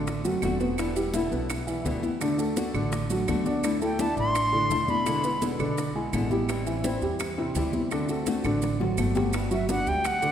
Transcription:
Already playing: A1 D3 D4
0.07 muted nylon-string guitar stroke, high bongo, high conga, maracas
0.24 F#1 F#3 A3 C4 F#4, high bongo, high conga, maracas
0.42 E1 D3 A3 C4 F#4, high bongo, low bongo, high conga, claves, maracas
0.60 A3 B3 C4 F#4 B4, high bongo, high conga, maracas
0.78 B2 D3 G3 B3 E4, high bongo, high conga, claves, maracas
0.96 G3 B3 E4 G4, high bongo, high conga, maracas
1.14 B2 D3 G3 B3 E4 E5, high bongo, high conga, maracas
1.31 B1 B3 B4, high conga, maracas
1.49 muted nylon-string guitar stroke, high bongo, high conga, claves, maracas
1.67 E3 G3 B3 E4, high bongo, high conga, maracas
1.85 D2 B2 D3 G3 B3 E4 B4, high bongo, low bongo, high conga, maracas
2.02 G3 B3 E4, high bongo, high conga, maracas
2.21 D3 A3 D4 F#4, high bongo, high conga, claves, maracas
2.38 A3 D4 F#4 A4, high bongo, high conga, maracas
2.56 D3 A3 D4 F#4, high bongo, high conga, maracas
2.74 A1 D3 D4, claves, maracas
2.92 muted nylon-string guitar stroke, high bongo, high conga, maracas
3.10 F#3 A3 D4 F#4, high bongo, high conga, maracas
3.28 D2 D3 A3 D4 F#4, high bongo, low bongo, high conga, claves, maracas
3.45 A3 D4 F#4 D5, high bongo, high conga, maracas
3.63 D3 A3 D4 E4, high bongo, high conga, claves, maracas
3.81 A3 D4 E4 A4 G5, high bongo, high conga, maracas
3.99 D3 A3 D4 E4 D5 A5, high bongo, high conga, maracas
4.17 A1 D4 D5 C6, high conga, maracas
4.34 muted nylon-string guitar stroke, high bongo, high conga, claves, maracas
4.52 D3 A3 D4 E4, high bongo, high conga
4.70 E1 D3 A3 D4 E4 D5, high bongo, low bongo, high conga, maracas
4.88 A3 D4 E4 B5, high bongo, high conga, maracas
5.06 B2 D3 G#3 B3 D4 E4, high bongo, high conga, claves, maracas
5.24 G#3 B3 E4 B4, high bongo, high conga, maracas
5.42 B2 D3 G#3 B3 E4, high bongo, high conga, maracas
5.59 B1 D3 D4, claves, maracas
5.77 muted nylon-string guitar stroke, high bongo, high conga, maracas
5.95 G#3 B3 E4 G#4, high bongo, high conga
6.13 A1 B2 D3 G#3 B3 E4, high bongo, low bongo, high conga, claves, maracas
6.31 G3 G#3 B3 E4 G4, high bongo, high conga, maracas
6.48 E3 G3 C4 E4, high bongo, high conga, claves, maracas
6.66 E3 G3 C4 E4, high bongo, high conga, maracas
6.84 E3 G3 C4 E4 C5, high bongo, high conga, maracas
7.02 E2 G3 G4, high conga, maracas
7.19 muted nylon-string guitar stroke, high bongo, high conga, claves, maracas
7.38 C3 G3 C4 E4, high bongo, high conga
7.55 D2 E3 G3 C4 E4 G4, high bongo, low bongo, high conga, maracas
7.73 G3 C4 E4, high bongo, high conga, maracas
7.91 D3 A3 C4 D4 F#4, high bongo, high conga, claves, maracas
8.09 A3 C4 F#4 A4, high bongo, high conga, maracas
8.26 D3 A3 C4 F#4, high bongo, high conga, maracas
8.44 A1 D3 D4, high bongo, claves, maracas
8.62 muted nylon-string guitar stroke, high bongo, high conga, maracas
8.80 F#3 A3 C4 F#4, low bongo, high conga
8.98 G1 D3 A3 C4 F#4, low bongo, high conga, claves, maracas
9.15 G3 A3 C4 F#4 G4, low bongo, high conga, maracas
9.33 G3 B3 F#4, high bongo, high conga, claves, maracas
9.51 F#3 B3 F#4 E5, high bongo, high conga, maracas
9.69 G3 B3 D4 F#4 D5 F#5, high bongo, high conga, maracas
9.87 D2 G3 G5, high conga, maracas
10.04 F#5, muted nylon-string guitar stroke, high bongo, high conga, claves, maracas
10.22 D3 B3 D4 F#4, high bongo, high conga, maracas

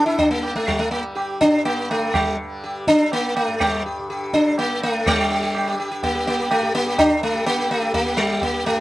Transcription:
Already playing: G2 D3 G3
0.06 E4
0.18 D4, tabla tin, tabla ge
0.31 A#3
0.35 G3
0.43 tabla na
0.56 A3, tabla ke
0.67 G3, tabla tin, tabla ge
0.79 A3
0.88 G3 A#3
0.92 tabla na
1.15 G4, tabla na
1.41 G2 D4, tabla ke
1.65 A#3, tabla na
1.90 D3 A3, tabla na
2.14 G3, tabla na, tabla ge
2.43 G3
2.64 G4
2.87 D4, tabla ke
2.96 G3
3.12 A#3, tabla na
3.36 A3, tabla na
3.47 G2
3.60 G3, tabla na, tabla ge
3.86 G4
3.99 D3
4.10 G4
4.33 D4, tabla ke
4.50 G3
4.58 A#3, tabla na
4.82 A3, tabla na
5.06 D3 G3 G4, tabla na, tabla ge
5.19 G4
5.30 G4
5.43 G4
5.55 G3 G4, tabla na
5.67 G4
5.80 G4
5.91 G4
6.03 A#3, tabla tin, tabla ge
6.09 G3
6.15 G4
6.27 A#3, tabla na
6.39 G4
6.51 A3, tabla na
6.60 G2 G4
6.75 A#3
6.86 G4
6.98 D4, tabla na, tabla ge
7.11 D3
7.23 A3
7.35 G4
7.46 A#3, tabla na
7.58 G3 G4
7.70 A3, tabla na
7.82 G4
7.94 A#3, tabla tin, tabla ge
8.06 G4
8.12 G3
8.17 G3
8.29 G4
8.41 A#3, tabla tin, tabla ge
8.53 G4
8.63 G2 A3, tabla na

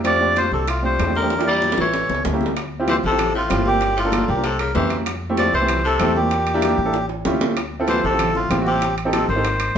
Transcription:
Already playing: F2
0.04 F3 A3 C4 D4 G4 D5, high bongo, high timbale
0.20 A3 C4 D4 G4, high conga
0.36 F3 C5, high bongo, high conga, high timbale, low timbale
0.52 C2 C3 A4, high bongo, high conga
0.68 A2 F4, high bongo, high conga, high timbale
0.82 F3 A3 C4 D4 G4 C5, high bongo, high conga
0.99 E2, high bongo, low bongo, high conga, high timbale, low timbale
1.06 A3 C4 D4 G4
1.15 D3 A#4, high bongo, high conga
1.22 A3 C4 D4 G4
1.30 high bongo, high conga, high timbale
1.38 A#3 D4 E4 G4, high timbale
1.46 G3 D5, high conga
1.62 high bongo, high conga
1.72 low timbale
1.78 A1 E3 C#5, high bongo, high conga
1.93 high conga, low timbale
2.09 C#2, low bongo, high conga
2.15 low timbale
2.24 D2, low bongo, high conga, low timbale
2.32 A#3 C#4 E4 G4
2.40 low bongo, high conga
2.46 low timbale
2.56 high bongo, high conga, high timbale
2.72 high conga
2.80 C4 E4 F4 G4
2.88 E3 C5, high bongo, high conga, high timbale, low timbale
3.03 A1 C3 A4, high bongo, high conga
3.11 C4 E4 F4 G4
3.19 high bongo, high conga, low conga, high timbale
3.35 A2 F4, high bongo, high conga
3.50 G1 C4 E4 F4 G4, high bongo, low bongo, high conga, high timbale, low timbale
3.65 A#2 G4, high bongo, high conga
3.81 high bongo, high conga, high timbale
3.96 A2 F4, high conga, high timbale
4.04 A#3 D4 F4 A4
4.12 high bongo, high conga, high timbale, low timbale
4.28 C2 A#2 G4, high bongo, high conga
4.36 A#3 D4 F4 A#4
4.44 C3 A4, high bongo, high conga, high timbale
4.59 C#3 A#4, high bongo, high conga, high timbale
4.74 F2 E3 A#3 C#4 E4 G4 C5, high bongo, low bongo, high conga, low timbale
4.90 high bongo, high conga, high timbale
5.06 high bongo, high conga, high timbale
5.22 high conga
5.29 A3 C4 E4 G4
5.37 F3 D5, high bongo, high conga, high timbale, low timbale
5.53 C2 E3 C5, high bongo, high conga
5.61 A3 C4 E4 G4
5.69 high bongo, high conga, low conga, high timbale
5.84 C3 A4, high bongo, high conga
6.00 E2 A3 C4 E4 G4, high bongo, low bongo, high conga, high timbale, low timbale
6.15 A#2 G4, high bongo, high conga
6.31 high bongo, high conga, high timbale
6.47 high conga, high timbale
6.54 A#3 D4 E4 G4
6.62 high bongo, high conga, high timbale, low timbale
6.78 A1, high bongo, high conga
6.85 A#3 D4 E4 A4
6.93 high bongo, high conga, high timbale
7.09 high bongo, high conga, high timbale
7.25 D2 C#4 E4 F4 G4, high bongo, low bongo, high conga, low timbale
7.41 high bongo, high conga, low timbale
7.57 high bongo, high conga, high timbale
7.72 high conga
7.80 C4 E4 F4 A4
7.88 E3 C5, high bongo, high conga, high timbale, low timbale
8.03 A1 C3 A4, high bongo, high conga
8.11 C4 E4 F4 A4
8.19 high bongo, high conga, low conga, high timbale
8.35 A2 F4, high bongo, high conga, low conga
8.50 A1 C4 E4 F4 G4, high bongo, low bongo, high conga, high timbale, low timbale
8.60 A2 F#4
8.66 C3 G4, high bongo, high conga
8.82 high bongo, high conga, high timbale
8.98 high conga, high timbale
9.05 C4 D#4 G4 A4
9.12 C3 A4, high bongo, high conga, high timbale, low timbale
9.29 G#1 D#3 C5, high bongo
9.36 C4 D#4 G4 A4
9.45 high bongo, high conga, high timbale
9.60 high bongo, high conga, high timbale

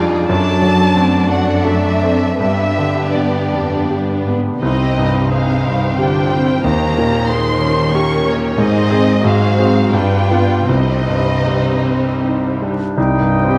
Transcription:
Already playing: F2 F3 G3 D4 D#4 F4 G#4 D5
0.29 F#2 F#3 D4 A4 D5 A5
0.62 F#3
0.95 A3 C4 F#4 D5
1.29 D4 F#4 F#5
1.65 A4 E5
2.03 C4
2.39 G2 B3 D4 G4 B4 E5
2.78 D3
3.13 G2 B3 D5
3.52 F2 D4
3.90 G2 G4
4.27 G#2 B3
4.61 C2 C3 C4 D#4 G4 C5 D#5
4.97 G2 D#4
5.31 C4 D#4 G#4 C5 F5
5.65 G2 G4
5.98 D3 D4 F4 G4 G5
6.31 C4
6.63 D#2 D#3 A#3 D#4 G4 A#5
6.97 A#2 C#4
7.30 G#3 A#3 D#4 A#4 C6
7.61 G3 C#4
7.93 A#3 C#4 G4 A#4 C#6
8.27 A#3 C#5
8.58 G#2 G#3 D#4 G#4 C5 D#5
8.90 C4 G#4
9.23 G#2 F#3 F#4 G#4 C5 F5
9.58 C4 F#4 G#4
9.92 G2 G3 D4 F4 B4 G5
10.31 B3 F4
10.68 C2 C3 G3 C4 D#4 C5 D#5
11.08 G2
11.47 G3
11.85 C4
12.24 D#4
12.62 G3 D4
12.97 C2 G3 D#4 D#5 G5
13.20 G2
13.43 C4
13.49 G4

